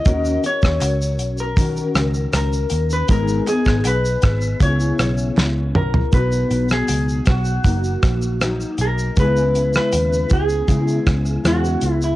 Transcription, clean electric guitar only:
0.00 0.46 D#5 loud
0.46 1.40 C#5 loud
1.40 2.34 A#4 medium
2.35 2.92 A#4 medium
2.93 3.11 B4 medium
3.11 3.45 A#4 loud
3.48 3.83 G#4 medium
3.87 4.62 B4 loud
4.63 5.72 C#5 medium
5.76 6.14 A#4 medium
6.14 6.72 B4 loud
6.72 7.24 G#4 medium
7.30 8.38 F#4 medium
8.81 9.15 A#4 medium
9.20 9.75 B4 loud
9.76 10.33 B4 loud
10.33 11.47 G#4 loud
11.47 11.92 F#4 medium
11.92 12.04 E4 medium
12.04 12.16 E4 medium

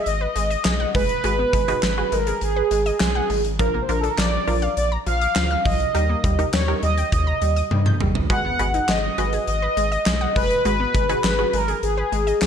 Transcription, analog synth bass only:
0.06 0.27 G#1 loud
0.36 0.56 G#1 loud
0.65 0.86 B1 medium
0.95 1.15 F#1 loud
1.24 1.45 G#1 loud
1.53 1.74 G#1 loud
1.83 2.03 G#1 loud
2.12 2.33 G#1 loud
2.42 2.62 G#1 loud
2.71 2.92 G#1 loud
3.01 3.21 B1 medium
3.30 3.61 G#1 medium
3.59 3.80 A#1 loud
3.89 4.09 A#1 loud
4.18 4.39 A#1 loud
4.48 4.68 A#1 loud
4.77 4.98 A#1 loud
5.07 5.27 A#1 loud
5.36 5.56 D2 medium
5.65 5.86 C2 medium
5.95 6.15 D#2 loud
6.24 6.45 D#2 loud
6.53 6.74 D#2 loud
6.83 7.03 D#2 loud
7.12 7.33 D#2 loud
7.42 7.62 D#2 loud
7.71 8.02 G2 loud
8.00 8.21 G1 medium
8.30 8.51 G#1 loud
8.59 8.80 G#1 loud
8.89 9.09 G#1 loud
9.18 9.39 G#1 loud
9.48 9.68 G#1 loud
9.77 9.98 G#1 loud
10.06 10.27 B1 medium
10.36 10.57 F#1 loud
10.65 10.86 G#1 loud
10.95 11.15 G#1 loud
11.24 11.45 G#1 loud
11.53 11.74 G#1 loud
11.83 12.03 G#1 loud
12.12 12.33 G#1 loud
12.42 12.47 B1 loud

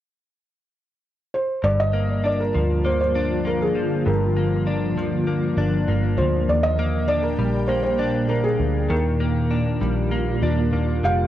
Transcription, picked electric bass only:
1.64 2.51 G1 medium
2.56 3.76 D2 medium
3.76 4.05 F1 medium
4.07 4.97 G1 loud
4.97 5.55 D2 medium
5.57 5.86 G1 medium
5.88 6.20 G1 medium
6.18 6.47 D2 medium
6.49 7.36 D#2 medium
7.39 8.56 A#1 medium
8.60 8.89 D2 medium
8.90 9.77 D#2 medium
9.82 10.39 A#1 medium
10.43 10.71 D#2 medium
10.73 11.02 D#2 medium
11.03 11.27 F1 medium

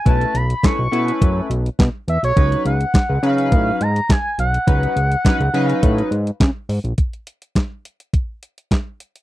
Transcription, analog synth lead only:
0.07 0.38 A5 loud
0.36 0.66 B5 loud
0.64 1.50 C#6 loud
2.09 2.23 E5 medium
2.24 2.63 C#5 medium
2.66 3.26 F#5 loud
3.24 3.83 F5 loud
3.82 4.12 A#5 loud
4.11 4.39 G#5 loud
4.40 5.65 F#5 loud
5.65 6.37 F5 loud

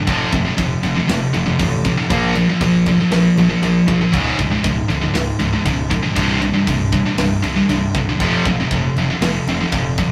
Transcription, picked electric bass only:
0.07 0.24 F1 medium
0.32 0.49 F1 loud
0.58 0.75 F1 loud
0.83 1.00 F1 medium
1.09 1.25 F1 medium
1.34 1.51 F1 medium
1.60 1.93 A1 medium
2.10 2.44 A#1 loud
2.61 2.94 A#1 medium
3.11 3.28 A#1 medium
3.36 3.53 A#1 medium
3.62 3.79 A#1 loud
3.88 4.05 A#1 medium
4.13 4.30 C#1 medium
4.39 4.56 C#1 medium
4.64 4.81 C#1 medium
4.90 5.06 C#1 medium
5.14 5.31 C#1 medium
5.40 5.57 C#1 medium
5.66 5.99 C#1 loud
6.16 6.50 C1 medium
6.67 7.01 C1 medium
7.17 7.34 C1 medium
7.43 7.60 C1 medium
7.68 7.85 C1 medium
7.95 8.11 C1 medium
8.20 8.37 F1 loud
8.45 8.62 F1 medium
8.71 8.88 F1 medium
8.96 9.13 F1 medium
9.21 9.38 F1 loud
9.47 9.64 F1 loud
9.72 10.06 F1 loud

